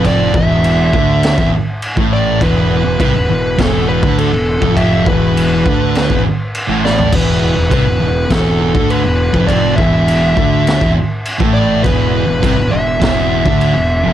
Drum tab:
CC |x---x---x---x---|x---x---x---x---|x---x---x---x---|x---x---x---x---|
SD |--------o-------|--------o-------|--------o-----o-|--------o-------|
FT |----------------|----------------|---------------o|----------------|
BD |o-o---o--o---o--|o---o---o--o---o|o-o---o--o------|o---o---o--o---o|

CC |x---x---x---x---|x---x---x---x---|
SD |--------o-------|--------o-------|
FT |----------------|----------------|
BD |o-o---o--o---o--|o---o---o--o----|